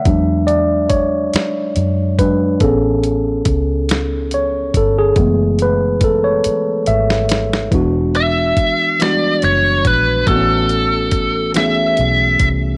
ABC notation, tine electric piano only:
X:1
M:6/8
L:1/16
Q:3/8=47
K:Emix
V:1 name="Tine electric piano"
e2 d2 c6 B2 | A6 z2 c2 A G- | G2 B2 A c3 e4 | [E,G,B,DF]6 [E,=G,^G,B,DF]6 |
[E,A,B,=C^CF]6 [E,A,B,CG]6 |]
V:2 name="Tine electric piano"
[F,G,D]8- [F,G,D]2 [F,G,D]2 | [B,CG]2 z8 z2 | [E,G,A,B,]6 z6 | z12 |
z12 |]